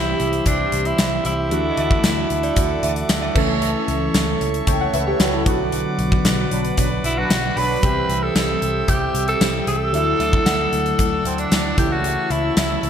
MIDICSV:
0, 0, Header, 1, 8, 480
1, 0, Start_track
1, 0, Tempo, 526316
1, 1382, Time_signature, 4, 2, 24, 8
1, 11764, End_track
2, 0, Start_track
2, 0, Title_t, "Pipe organ"
2, 0, Program_c, 0, 19
2, 0, Note_on_c, 0, 67, 66
2, 0, Note_on_c, 0, 72, 58
2, 0, Note_on_c, 0, 76, 58
2, 0, Note_on_c, 0, 84, 67
2, 1363, Note_off_c, 0, 67, 0
2, 1363, Note_off_c, 0, 72, 0
2, 1363, Note_off_c, 0, 84, 0
2, 1380, Note_on_c, 0, 86, 76
2, 1381, Note_on_c, 0, 69, 62
2, 1381, Note_on_c, 0, 78, 60
2, 3044, Note_off_c, 0, 78, 0
2, 3044, Note_off_c, 0, 86, 0
2, 3061, Note_on_c, 0, 85, 81
2, 3062, Note_on_c, 0, 73, 67
2, 4946, Note_off_c, 0, 69, 0
2, 4946, Note_off_c, 0, 76, 0
2, 4962, Note_off_c, 0, 85, 0
2, 4963, Note_off_c, 0, 73, 0
2, 4983, Note_on_c, 0, 74, 69
2, 4984, Note_on_c, 0, 71, 72
2, 4984, Note_on_c, 0, 78, 62
2, 4985, Note_on_c, 0, 86, 83
2, 7121, Note_off_c, 0, 71, 0
2, 7121, Note_off_c, 0, 74, 0
2, 7121, Note_off_c, 0, 78, 0
2, 7121, Note_off_c, 0, 86, 0
2, 7142, Note_on_c, 0, 60, 65
2, 7142, Note_on_c, 0, 76, 59
2, 7142, Note_on_c, 0, 79, 59
2, 7142, Note_on_c, 0, 88, 76
2, 9042, Note_off_c, 0, 60, 0
2, 9042, Note_off_c, 0, 76, 0
2, 9042, Note_off_c, 0, 79, 0
2, 9061, Note_on_c, 0, 74, 63
2, 9063, Note_on_c, 0, 78, 59
2, 9063, Note_on_c, 0, 81, 65
2, 10724, Note_off_c, 0, 74, 0
2, 10725, Note_off_c, 0, 78, 0
2, 10741, Note_on_c, 0, 73, 73
2, 10743, Note_on_c, 0, 76, 64
2, 11764, Note_off_c, 0, 73, 0
2, 11764, Note_off_c, 0, 76, 0
2, 11764, Note_off_c, 0, 81, 0
2, 11764, Note_off_c, 0, 88, 0
2, 11764, End_track
3, 0, Start_track
3, 0, Title_t, "Synth bell"
3, 0, Program_c, 1, 98
3, 1556, Note_on_c, 1, 75, 79
3, 1619, Note_on_c, 1, 76, 107
3, 1621, Note_off_c, 1, 75, 0
3, 2219, Note_on_c, 1, 74, 97
3, 2238, Note_off_c, 1, 76, 0
3, 2555, Note_off_c, 1, 74, 0
3, 2582, Note_on_c, 1, 76, 102
3, 2916, Note_off_c, 1, 76, 0
3, 2940, Note_on_c, 1, 76, 92
3, 3864, Note_off_c, 1, 76, 0
3, 9301, Note_on_c, 1, 76, 97
3, 9540, Note_on_c, 1, 78, 111
3, 9549, Note_off_c, 1, 76, 0
3, 10104, Note_off_c, 1, 78, 0
3, 11764, End_track
4, 0, Start_track
4, 0, Title_t, "Tenor saxophone"
4, 0, Program_c, 2, 66
4, 0, Note_on_c, 2, 64, 93
4, 422, Note_off_c, 2, 64, 0
4, 427, Note_on_c, 2, 62, 91
4, 786, Note_on_c, 2, 64, 94
4, 799, Note_off_c, 2, 62, 0
4, 1140, Note_off_c, 2, 64, 0
4, 1145, Note_on_c, 2, 64, 96
4, 3027, Note_off_c, 2, 64, 0
4, 6429, Note_on_c, 2, 64, 97
4, 6547, Note_on_c, 2, 66, 102
4, 6561, Note_off_c, 2, 64, 0
4, 6907, Note_on_c, 2, 71, 115
4, 6920, Note_off_c, 2, 66, 0
4, 7505, Note_on_c, 2, 69, 99
4, 7519, Note_off_c, 2, 71, 0
4, 8104, Note_on_c, 2, 67, 96
4, 8118, Note_off_c, 2, 69, 0
4, 8463, Note_off_c, 2, 67, 0
4, 8467, Note_on_c, 2, 69, 97
4, 8799, Note_off_c, 2, 69, 0
4, 8826, Note_on_c, 2, 69, 112
4, 10227, Note_off_c, 2, 69, 0
4, 10271, Note_on_c, 2, 60, 85
4, 10387, Note_on_c, 2, 62, 89
4, 10401, Note_off_c, 2, 60, 0
4, 10744, Note_off_c, 2, 62, 0
4, 10748, Note_on_c, 2, 67, 93
4, 10868, Note_on_c, 2, 66, 93
4, 10882, Note_off_c, 2, 67, 0
4, 11229, Note_on_c, 2, 64, 88
4, 11242, Note_off_c, 2, 66, 0
4, 11465, Note_off_c, 2, 64, 0
4, 11471, Note_on_c, 2, 64, 88
4, 11764, Note_off_c, 2, 64, 0
4, 11764, End_track
5, 0, Start_track
5, 0, Title_t, "Analog polysynth"
5, 0, Program_c, 3, 90
5, 5941, Note_on_c, 3, 71, 91
5, 5942, Note_on_c, 3, 54, 84
5, 5942, Note_on_c, 3, 62, 83
5, 6043, Note_off_c, 3, 71, 0
5, 6044, Note_off_c, 3, 54, 0
5, 6044, Note_off_c, 3, 62, 0
5, 6182, Note_on_c, 3, 62, 80
5, 6182, Note_on_c, 3, 71, 89
5, 6183, Note_on_c, 3, 54, 76
5, 6283, Note_off_c, 3, 71, 0
5, 6284, Note_off_c, 3, 54, 0
5, 6284, Note_off_c, 3, 62, 0
5, 6541, Note_on_c, 3, 54, 97
5, 6541, Note_on_c, 3, 71, 104
5, 6542, Note_on_c, 3, 62, 95
5, 6643, Note_off_c, 3, 54, 0
5, 6643, Note_off_c, 3, 71, 0
5, 6644, Note_off_c, 3, 62, 0
5, 6902, Note_on_c, 3, 62, 96
5, 6903, Note_on_c, 3, 54, 97
5, 6903, Note_on_c, 3, 71, 107
5, 7106, Note_off_c, 3, 54, 0
5, 7106, Note_off_c, 3, 62, 0
5, 7106, Note_off_c, 3, 71, 0
5, 11764, End_track
6, 0, Start_track
6, 0, Title_t, "Synth keys"
6, 0, Program_c, 4, 88
6, 0, Control_c, 4, 64, 127
6, 0, Note_on_c, 4, 52, 65
6, 0, Note_on_c, 4, 55, 59
6, 0, Note_on_c, 4, 60, 59
6, 0, Note_on_c, 4, 67, 70
6, 1344, Note_off_c, 4, 55, 0
6, 1347, Note_off_c, 4, 60, 0
6, 1351, Note_off_c, 4, 67, 0
6, 1358, Note_off_c, 4, 52, 0
6, 1369, Note_on_c, 4, 52, 63
6, 1376, Note_on_c, 4, 57, 62
6, 1383, Note_on_c, 4, 62, 62
6, 1390, Note_on_c, 4, 66, 68
6, 1395, Control_c, 4, 64, 0
6, 1580, Control_c, 4, 64, 127
6, 3021, Note_off_c, 4, 52, 0
6, 3025, Note_off_c, 4, 57, 0
6, 3029, Note_off_c, 4, 62, 0
6, 3032, Note_off_c, 4, 66, 0
6, 3051, Note_on_c, 4, 52, 80
6, 3058, Note_on_c, 4, 57, 72
6, 3065, Note_on_c, 4, 61, 71
6, 3072, Control_c, 4, 64, 0
6, 3074, Note_on_c, 4, 69, 82
6, 3223, Control_c, 4, 64, 127
6, 4244, Note_off_c, 4, 69, 0
6, 4262, Note_on_c, 4, 79, 65
6, 4268, Note_on_c, 4, 73, 52
6, 4376, Note_off_c, 4, 79, 0
6, 4379, Note_off_c, 4, 73, 0
6, 4384, Note_on_c, 4, 78, 70
6, 4390, Note_on_c, 4, 73, 58
6, 4497, Note_off_c, 4, 78, 0
6, 4500, Note_off_c, 4, 73, 0
6, 4503, Note_on_c, 4, 76, 76
6, 4509, Note_on_c, 4, 71, 61
6, 4616, Note_off_c, 4, 76, 0
6, 4620, Note_off_c, 4, 71, 0
6, 4622, Note_on_c, 4, 73, 72
6, 4627, Note_on_c, 4, 67, 60
6, 4702, Note_off_c, 4, 52, 0
6, 4706, Note_off_c, 4, 57, 0
6, 4710, Note_off_c, 4, 61, 0
6, 4736, Note_off_c, 4, 73, 0
6, 4739, Note_off_c, 4, 67, 0
6, 4742, Note_on_c, 4, 71, 70
6, 4747, Note_on_c, 4, 66, 60
6, 4856, Note_off_c, 4, 71, 0
6, 4858, Note_off_c, 4, 66, 0
6, 4860, Note_on_c, 4, 69, 67
6, 4866, Note_on_c, 4, 64, 55
6, 4968, Note_on_c, 4, 50, 83
6, 4976, Note_on_c, 4, 54, 75
6, 4983, Note_on_c, 4, 59, 72
6, 4990, Note_on_c, 4, 66, 85
6, 4994, Control_c, 4, 64, 0
6, 5089, Note_off_c, 4, 69, 0
6, 5092, Note_off_c, 4, 64, 0
6, 5170, Control_c, 4, 64, 127
6, 6859, Note_off_c, 4, 50, 0
6, 6862, Note_off_c, 4, 54, 0
6, 6866, Note_off_c, 4, 59, 0
6, 6869, Note_off_c, 4, 66, 0
6, 7131, Note_on_c, 4, 52, 65
6, 7138, Note_on_c, 4, 55, 61
6, 7146, Note_on_c, 4, 60, 60
6, 7153, Note_on_c, 4, 67, 73
6, 7155, Control_c, 4, 64, 0
6, 7333, Control_c, 4, 64, 127
6, 8547, Note_off_c, 4, 52, 0
6, 8551, Note_off_c, 4, 55, 0
6, 8555, Note_off_c, 4, 60, 0
6, 8558, Note_off_c, 4, 67, 0
6, 8577, Note_on_c, 4, 52, 45
6, 8580, Note_on_c, 4, 55, 45
6, 8585, Note_on_c, 4, 60, 44
6, 8589, Note_on_c, 4, 67, 52
6, 9051, Note_on_c, 4, 50, 67
6, 9058, Note_on_c, 4, 54, 62
6, 9059, Note_off_c, 4, 52, 0
6, 9061, Note_off_c, 4, 55, 0
6, 9063, Note_off_c, 4, 60, 0
6, 9065, Note_off_c, 4, 67, 0
6, 9066, Note_on_c, 4, 57, 57
6, 9073, Note_on_c, 4, 64, 76
6, 9075, Control_c, 4, 64, 0
6, 9214, Control_c, 4, 64, 127
6, 10702, Note_off_c, 4, 50, 0
6, 10706, Note_off_c, 4, 54, 0
6, 10710, Note_off_c, 4, 57, 0
6, 10714, Note_off_c, 4, 64, 0
6, 10732, Note_on_c, 4, 49, 69
6, 10738, Note_on_c, 4, 52, 64
6, 10745, Note_on_c, 4, 57, 61
6, 10754, Control_c, 4, 64, 0
6, 10754, Note_on_c, 4, 64, 72
6, 10901, Control_c, 4, 64, 127
6, 11764, Note_off_c, 4, 49, 0
6, 11764, Note_off_c, 4, 52, 0
6, 11764, Note_off_c, 4, 57, 0
6, 11764, Note_off_c, 4, 64, 0
6, 11764, End_track
7, 0, Start_track
7, 0, Title_t, "Picked electric bass"
7, 0, Program_c, 5, 34
7, 0, Note_on_c, 5, 36, 108
7, 115, Note_off_c, 5, 36, 0
7, 183, Note_on_c, 5, 36, 96
7, 355, Note_off_c, 5, 36, 0
7, 419, Note_on_c, 5, 36, 90
7, 593, Note_off_c, 5, 36, 0
7, 661, Note_on_c, 5, 36, 104
7, 834, Note_off_c, 5, 36, 0
7, 901, Note_on_c, 5, 36, 99
7, 1074, Note_off_c, 5, 36, 0
7, 1140, Note_on_c, 5, 36, 97
7, 1381, Note_off_c, 5, 36, 0
7, 1381, Note_on_c, 5, 38, 102
7, 1554, Note_off_c, 5, 38, 0
7, 1621, Note_on_c, 5, 38, 100
7, 1794, Note_off_c, 5, 38, 0
7, 1861, Note_on_c, 5, 38, 107
7, 2034, Note_off_c, 5, 38, 0
7, 2102, Note_on_c, 5, 38, 98
7, 2275, Note_off_c, 5, 38, 0
7, 2340, Note_on_c, 5, 38, 103
7, 2513, Note_off_c, 5, 38, 0
7, 2581, Note_on_c, 5, 38, 104
7, 2754, Note_off_c, 5, 38, 0
7, 2820, Note_on_c, 5, 38, 92
7, 2994, Note_off_c, 5, 38, 0
7, 3060, Note_on_c, 5, 37, 95
7, 3406, Note_off_c, 5, 37, 0
7, 3540, Note_on_c, 5, 37, 105
7, 3714, Note_off_c, 5, 37, 0
7, 3780, Note_on_c, 5, 37, 115
7, 3953, Note_off_c, 5, 37, 0
7, 4020, Note_on_c, 5, 37, 94
7, 4194, Note_off_c, 5, 37, 0
7, 4262, Note_on_c, 5, 37, 100
7, 4434, Note_off_c, 5, 37, 0
7, 4502, Note_on_c, 5, 37, 94
7, 4674, Note_off_c, 5, 37, 0
7, 4740, Note_on_c, 5, 37, 102
7, 4981, Note_off_c, 5, 37, 0
7, 4981, Note_on_c, 5, 35, 100
7, 5327, Note_off_c, 5, 35, 0
7, 5460, Note_on_c, 5, 35, 102
7, 5633, Note_off_c, 5, 35, 0
7, 5700, Note_on_c, 5, 35, 113
7, 5873, Note_off_c, 5, 35, 0
7, 5941, Note_on_c, 5, 35, 89
7, 6114, Note_off_c, 5, 35, 0
7, 6181, Note_on_c, 5, 35, 98
7, 6354, Note_off_c, 5, 35, 0
7, 6420, Note_on_c, 5, 35, 101
7, 6593, Note_off_c, 5, 35, 0
7, 6660, Note_on_c, 5, 35, 95
7, 6833, Note_off_c, 5, 35, 0
7, 6899, Note_on_c, 5, 35, 90
7, 7073, Note_off_c, 5, 35, 0
7, 7141, Note_on_c, 5, 36, 103
7, 7314, Note_off_c, 5, 36, 0
7, 7380, Note_on_c, 5, 36, 94
7, 7553, Note_off_c, 5, 36, 0
7, 7620, Note_on_c, 5, 36, 112
7, 7793, Note_off_c, 5, 36, 0
7, 7862, Note_on_c, 5, 36, 94
7, 8035, Note_off_c, 5, 36, 0
7, 8101, Note_on_c, 5, 36, 95
7, 8274, Note_off_c, 5, 36, 0
7, 8340, Note_on_c, 5, 36, 101
7, 8513, Note_off_c, 5, 36, 0
7, 8580, Note_on_c, 5, 36, 96
7, 8753, Note_off_c, 5, 36, 0
7, 8821, Note_on_c, 5, 36, 100
7, 9062, Note_off_c, 5, 36, 0
7, 9062, Note_on_c, 5, 38, 101
7, 9235, Note_off_c, 5, 38, 0
7, 9301, Note_on_c, 5, 38, 101
7, 9474, Note_off_c, 5, 38, 0
7, 9541, Note_on_c, 5, 38, 109
7, 9714, Note_off_c, 5, 38, 0
7, 9782, Note_on_c, 5, 38, 98
7, 9955, Note_off_c, 5, 38, 0
7, 10022, Note_on_c, 5, 38, 105
7, 10195, Note_off_c, 5, 38, 0
7, 10263, Note_on_c, 5, 38, 104
7, 10435, Note_off_c, 5, 38, 0
7, 10504, Note_on_c, 5, 38, 98
7, 10676, Note_off_c, 5, 38, 0
7, 10742, Note_on_c, 5, 37, 96
7, 11087, Note_off_c, 5, 37, 0
7, 11221, Note_on_c, 5, 37, 98
7, 11394, Note_off_c, 5, 37, 0
7, 11462, Note_on_c, 5, 37, 120
7, 11634, Note_off_c, 5, 37, 0
7, 11702, Note_on_c, 5, 37, 88
7, 11764, Note_off_c, 5, 37, 0
7, 11764, End_track
8, 0, Start_track
8, 0, Title_t, "Drums"
8, 180, Note_on_c, 9, 42, 74
8, 271, Note_off_c, 9, 42, 0
8, 299, Note_on_c, 9, 42, 58
8, 390, Note_off_c, 9, 42, 0
8, 417, Note_on_c, 9, 42, 99
8, 420, Note_on_c, 9, 36, 87
8, 508, Note_off_c, 9, 42, 0
8, 511, Note_off_c, 9, 36, 0
8, 659, Note_on_c, 9, 42, 73
8, 750, Note_off_c, 9, 42, 0
8, 778, Note_on_c, 9, 42, 53
8, 869, Note_off_c, 9, 42, 0
8, 897, Note_on_c, 9, 54, 69
8, 898, Note_on_c, 9, 42, 79
8, 900, Note_on_c, 9, 38, 122
8, 988, Note_off_c, 9, 54, 0
8, 989, Note_off_c, 9, 42, 0
8, 991, Note_off_c, 9, 38, 0
8, 1139, Note_on_c, 9, 42, 81
8, 1230, Note_off_c, 9, 42, 0
8, 1380, Note_on_c, 9, 42, 79
8, 1471, Note_off_c, 9, 42, 0
8, 1618, Note_on_c, 9, 42, 70
8, 1709, Note_off_c, 9, 42, 0
8, 1739, Note_on_c, 9, 36, 97
8, 1830, Note_off_c, 9, 36, 0
8, 1857, Note_on_c, 9, 42, 86
8, 1857, Note_on_c, 9, 54, 66
8, 1859, Note_on_c, 9, 38, 113
8, 1948, Note_off_c, 9, 42, 0
8, 1948, Note_off_c, 9, 54, 0
8, 1950, Note_off_c, 9, 38, 0
8, 2099, Note_on_c, 9, 42, 72
8, 2190, Note_off_c, 9, 42, 0
8, 2219, Note_on_c, 9, 42, 60
8, 2310, Note_off_c, 9, 42, 0
8, 2338, Note_on_c, 9, 42, 94
8, 2341, Note_on_c, 9, 36, 87
8, 2429, Note_off_c, 9, 42, 0
8, 2432, Note_off_c, 9, 36, 0
8, 2581, Note_on_c, 9, 42, 73
8, 2673, Note_off_c, 9, 42, 0
8, 2701, Note_on_c, 9, 42, 54
8, 2793, Note_off_c, 9, 42, 0
8, 2818, Note_on_c, 9, 54, 70
8, 2819, Note_on_c, 9, 42, 83
8, 2822, Note_on_c, 9, 38, 113
8, 2910, Note_off_c, 9, 42, 0
8, 2910, Note_off_c, 9, 54, 0
8, 2913, Note_off_c, 9, 38, 0
8, 3059, Note_on_c, 9, 49, 80
8, 3061, Note_on_c, 9, 36, 113
8, 3151, Note_off_c, 9, 49, 0
8, 3152, Note_off_c, 9, 36, 0
8, 3301, Note_on_c, 9, 42, 75
8, 3392, Note_off_c, 9, 42, 0
8, 3541, Note_on_c, 9, 42, 73
8, 3632, Note_off_c, 9, 42, 0
8, 3779, Note_on_c, 9, 42, 84
8, 3779, Note_on_c, 9, 54, 67
8, 3781, Note_on_c, 9, 38, 119
8, 3870, Note_off_c, 9, 42, 0
8, 3870, Note_off_c, 9, 54, 0
8, 3872, Note_off_c, 9, 38, 0
8, 4023, Note_on_c, 9, 42, 71
8, 4114, Note_off_c, 9, 42, 0
8, 4142, Note_on_c, 9, 42, 60
8, 4233, Note_off_c, 9, 42, 0
8, 4260, Note_on_c, 9, 42, 92
8, 4262, Note_on_c, 9, 36, 93
8, 4351, Note_off_c, 9, 42, 0
8, 4353, Note_off_c, 9, 36, 0
8, 4502, Note_on_c, 9, 42, 72
8, 4593, Note_off_c, 9, 42, 0
8, 4739, Note_on_c, 9, 54, 69
8, 4740, Note_on_c, 9, 42, 82
8, 4742, Note_on_c, 9, 38, 117
8, 4830, Note_off_c, 9, 54, 0
8, 4831, Note_off_c, 9, 42, 0
8, 4834, Note_off_c, 9, 38, 0
8, 4981, Note_on_c, 9, 36, 113
8, 4981, Note_on_c, 9, 42, 85
8, 5072, Note_off_c, 9, 42, 0
8, 5073, Note_off_c, 9, 36, 0
8, 5220, Note_on_c, 9, 42, 78
8, 5311, Note_off_c, 9, 42, 0
8, 5460, Note_on_c, 9, 42, 72
8, 5551, Note_off_c, 9, 42, 0
8, 5581, Note_on_c, 9, 36, 99
8, 5672, Note_off_c, 9, 36, 0
8, 5698, Note_on_c, 9, 54, 65
8, 5699, Note_on_c, 9, 42, 87
8, 5701, Note_on_c, 9, 38, 118
8, 5790, Note_off_c, 9, 42, 0
8, 5790, Note_off_c, 9, 54, 0
8, 5792, Note_off_c, 9, 38, 0
8, 5942, Note_on_c, 9, 42, 65
8, 6033, Note_off_c, 9, 42, 0
8, 6061, Note_on_c, 9, 42, 57
8, 6153, Note_off_c, 9, 42, 0
8, 6179, Note_on_c, 9, 42, 94
8, 6182, Note_on_c, 9, 36, 86
8, 6270, Note_off_c, 9, 42, 0
8, 6273, Note_off_c, 9, 36, 0
8, 6423, Note_on_c, 9, 42, 71
8, 6514, Note_off_c, 9, 42, 0
8, 6661, Note_on_c, 9, 42, 76
8, 6661, Note_on_c, 9, 54, 68
8, 6664, Note_on_c, 9, 38, 112
8, 6752, Note_off_c, 9, 54, 0
8, 6753, Note_off_c, 9, 42, 0
8, 6755, Note_off_c, 9, 38, 0
8, 6902, Note_on_c, 9, 46, 83
8, 6993, Note_off_c, 9, 46, 0
8, 7142, Note_on_c, 9, 36, 107
8, 7143, Note_on_c, 9, 42, 80
8, 7233, Note_off_c, 9, 36, 0
8, 7234, Note_off_c, 9, 42, 0
8, 7383, Note_on_c, 9, 42, 75
8, 7474, Note_off_c, 9, 42, 0
8, 7620, Note_on_c, 9, 42, 84
8, 7620, Note_on_c, 9, 54, 64
8, 7622, Note_on_c, 9, 38, 109
8, 7711, Note_off_c, 9, 42, 0
8, 7711, Note_off_c, 9, 54, 0
8, 7713, Note_off_c, 9, 38, 0
8, 7863, Note_on_c, 9, 42, 67
8, 7954, Note_off_c, 9, 42, 0
8, 8100, Note_on_c, 9, 42, 96
8, 8102, Note_on_c, 9, 36, 87
8, 8191, Note_off_c, 9, 42, 0
8, 8193, Note_off_c, 9, 36, 0
8, 8342, Note_on_c, 9, 42, 68
8, 8433, Note_off_c, 9, 42, 0
8, 8462, Note_on_c, 9, 42, 50
8, 8553, Note_off_c, 9, 42, 0
8, 8581, Note_on_c, 9, 54, 69
8, 8582, Note_on_c, 9, 42, 83
8, 8585, Note_on_c, 9, 38, 117
8, 8672, Note_off_c, 9, 54, 0
8, 8673, Note_off_c, 9, 42, 0
8, 8676, Note_off_c, 9, 38, 0
8, 8822, Note_on_c, 9, 42, 83
8, 8913, Note_off_c, 9, 42, 0
8, 9064, Note_on_c, 9, 42, 81
8, 9155, Note_off_c, 9, 42, 0
8, 9303, Note_on_c, 9, 42, 74
8, 9395, Note_off_c, 9, 42, 0
8, 9422, Note_on_c, 9, 36, 99
8, 9513, Note_off_c, 9, 36, 0
8, 9540, Note_on_c, 9, 42, 88
8, 9540, Note_on_c, 9, 54, 61
8, 9542, Note_on_c, 9, 38, 114
8, 9631, Note_off_c, 9, 42, 0
8, 9631, Note_off_c, 9, 54, 0
8, 9633, Note_off_c, 9, 38, 0
8, 9783, Note_on_c, 9, 42, 66
8, 9875, Note_off_c, 9, 42, 0
8, 9903, Note_on_c, 9, 42, 59
8, 9994, Note_off_c, 9, 42, 0
8, 10021, Note_on_c, 9, 42, 92
8, 10023, Note_on_c, 9, 36, 87
8, 10113, Note_off_c, 9, 42, 0
8, 10114, Note_off_c, 9, 36, 0
8, 10263, Note_on_c, 9, 42, 68
8, 10355, Note_off_c, 9, 42, 0
8, 10382, Note_on_c, 9, 42, 55
8, 10473, Note_off_c, 9, 42, 0
8, 10502, Note_on_c, 9, 54, 73
8, 10503, Note_on_c, 9, 42, 78
8, 10505, Note_on_c, 9, 38, 114
8, 10593, Note_off_c, 9, 54, 0
8, 10594, Note_off_c, 9, 42, 0
8, 10596, Note_off_c, 9, 38, 0
8, 10742, Note_on_c, 9, 36, 106
8, 10742, Note_on_c, 9, 42, 90
8, 10833, Note_off_c, 9, 42, 0
8, 10834, Note_off_c, 9, 36, 0
8, 10983, Note_on_c, 9, 42, 79
8, 11074, Note_off_c, 9, 42, 0
8, 11223, Note_on_c, 9, 42, 74
8, 11314, Note_off_c, 9, 42, 0
8, 11461, Note_on_c, 9, 54, 63
8, 11462, Note_on_c, 9, 42, 82
8, 11464, Note_on_c, 9, 38, 116
8, 11553, Note_off_c, 9, 42, 0
8, 11553, Note_off_c, 9, 54, 0
8, 11555, Note_off_c, 9, 38, 0
8, 11704, Note_on_c, 9, 42, 71
8, 11764, Note_off_c, 9, 42, 0
8, 11764, End_track
0, 0, End_of_file